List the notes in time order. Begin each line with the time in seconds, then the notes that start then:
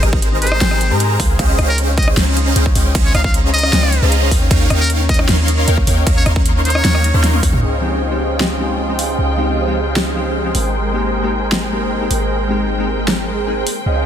Already playing: C4 D#4
0.03 G#1 G#3 G4 G#4 A#4 C5 A#5, cross-stick, closed hi-hat
0.13 D#4, kick
0.22 C4, closed hi-hat
0.32 D#4
0.41 G4 C5, closed hi-hat
0.47 closed hi-hat
0.51 D#4, cross-stick
0.61 G#1 G#3 C4 G#4 A#4 C5 G5, snare, closed hi-hat, crash
0.71 D#4, cross-stick
0.81 G4, closed hi-hat
0.90 G#2 G#3 G4 G#4 A#4 C5 A#5
1.00 C4, closed hi-hat
1.10 G4
1.19 C#2 G#3 G#4 A#4 F5, kick, open hi-hat
1.29 G#4
1.39 C#2 C4 C#4 G#4 C5 D#5 F5 G5, kick, closed hi-hat, crash
1.49 C#4
1.58 C#2 C#4 D#4 G#4 C5 D#5 F5 G5, cross-stick, closed hi-hat
1.68 C#4 A#4
1.78 C4, closed hi-hat
1.88 C#4
1.98 D#5, kick, closed hi-hat
2.02 closed hi-hat
2.07 C#4, cross-stick
2.17 C#2 C4 C#4 G#4 C5 D#5 F5 A#5, snare, closed hi-hat, crash
2.27 C#4
2.36 D#4, closed hi-hat
2.46 C#4
2.56 C#2 C4 C#4 G#4 C5 D#5 F5 G5, closed hi-hat
2.66 C#4, kick
2.75 C#2 C#4 D#4 G#4 C5 D#5 F5 G5, open hi-hat
2.85 C#4
2.95 C#2 C4 C#4 G#4 C5 D#5 F5 G#5, kick, closed hi-hat, crash
3.05 C#4 C#5
3.14 C#2 C#4 D#4 G#4 C5 D#5 F5 A#5, cross-stick, closed hi-hat
3.24 C#4 F5, kick
3.34 C4, closed hi-hat
3.44 C#4
3.53 D#4 D#5, closed hi-hat
3.59 closed hi-hat
3.63 C#4, cross-stick
3.73 C#2 C4 C#4 G#4 C5 D#5 F5 G5, snare, closed hi-hat, crash
3.83 C#4, cross-stick
3.92 D#4, closed hi-hat
4.02 C#2 C#4 G#4 C5 D#5 F5 A#5
4.12 C4, closed hi-hat
4.22 C#4
4.31 D#2 D#4 A#4 C#5 F5 G5, kick, open hi-hat
4.41 C#4
4.51 D#2 A#3 D#4 A#4 C#5 F5 G5, kick, closed hi-hat, crash
4.61 C#4
4.70 D#2 D#4 A#4 C#5 F5 G5, cross-stick, closed hi-hat
4.80 C#4 A#4
4.90 A#3, closed hi-hat
5.00 C#4
5.09 D#5, kick, closed hi-hat
5.14 closed hi-hat
5.19 C#4, cross-stick
5.29 D#2 A#3 D#4 A#4 C#5 F5 C6, snare, closed hi-hat, crash
5.38 C#4
5.48 D#4, closed hi-hat
5.58 C#4
5.67 D#2 A#3 D#4 A#4 C#5 F5 G5, closed hi-hat
5.77 C#4, kick
5.87 D#2 D#4 A#4 C#5 F5 G5, open hi-hat
5.97 C#4
6.07 D#2 D#4 A#4 C#5 F5 A#5, kick, closed hi-hat, crash
6.16 C#4 C#5
6.26 D#2 D#4 A#4 C#5 F5 C6, cross-stick, closed hi-hat
6.36 C#4, kick
6.46 A#3, closed hi-hat
6.55 C#4
6.65 D#4 C#5, closed hi-hat
6.70 closed hi-hat
6.75 C#4, cross-stick
6.84 D#2 A#3 D#4 A#4 C#5 F5 G5, snare, closed hi-hat, crash
6.94 C#4, cross-stick
7.04 D#4, closed hi-hat
7.14 D#2 D#4 A#4 C#5 F5 C6
7.23 F4, snare, closed hi-hat
7.33 C#4, high tom
7.43 D#2 A#3 A#4 C#5 F5 G5, kick, open hi-hat
7.53 D#4, mid tom
7.62 C#2 C#3 C#4 D#4 F4 G#4 C5 D#5 F5 G5
7.81 F3 G#3 C4 D#4 G4
8.10 F3 G#3 C4 D#4 G4
8.39 F3 G#3 C4 D#4 G4, snare
8.59 F3 G#3 C4 D#4 G4
8.88 F3 G#3 C4 D#4 G4
8.99 open hi-hat
9.18 C#2
9.37 F3 G#3 C4 D#4 G4
9.66 F3 G#3 C4 D#4 G4
9.95 F3 G#3 C4 D#4 G4, snare
10.15 F3 G#3 C4 D#4 G4
10.44 F3 G#3 C4 D#4 G4
10.55 G#1 G#3 G#4 A#4 C5 G5, open hi-hat
10.93 G#3 A#3 C4 D#4 G4
11.22 G#3 A#3 C4 D#4 G4
11.51 G#3 A#3 C4 D#4 G4, snare
11.71 G#3 A#3 C4 D#4 G4
12.00 G#3 A#3 C4 D#4 G4
12.10 G#1, open hi-hat
12.49 G#3 A#3 C4 D#4 G4
12.78 G#3 A#3 C4 D#4 G4
13.07 G#3 A#3 C4 D#4 G4, snare
13.46 G#3 A#3 C4 D#4 G#4
13.67 open hi-hat
13.86 C#2 C#3 C#4 D#4 F4 G#4 C5 D#5 F5 G5